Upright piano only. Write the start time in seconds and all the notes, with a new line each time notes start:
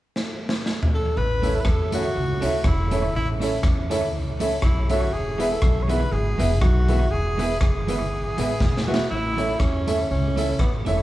1.42 E4 A4 C#5 E5
1.92 E4 A4 C#5 E5
2.42 E4 A4 C#5 E5
2.91 E4 A4 C#5 E5
3.41 E4 A4 C#5 E5
3.91 E4 A4 C#5 E5
4.40 E4 A4 C#5 E5
4.90 E4 A4 C#5 E5
5.39 E4 G#4 B4 E5
5.88 E4 G#4 B4 E5
6.38 E4 G#4 B4 E5
6.88 E4 G#4 B4 E5
7.38 E4 G#4 B4 E5
7.88 E4 G#4 B4 E5
8.37 E4 G#4 B4 E5
8.88 E4 G#4 B4 E5
9.37 E4 A4 C#5 E5
9.87 E4 A4 C#5 E5
10.37 E4 A4 C#5 E5
10.86 E4 A4 C#5 E5